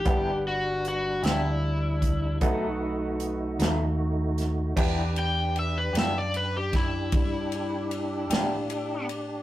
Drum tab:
CC |------------|x-----------|
RD |------------|-xxxxxxxxxxx|
HH |x-xx-xx-xx-x|------------|
SD |---o-----o-o|---o-o---o--|
BD |o----oo-----|o----oo-----|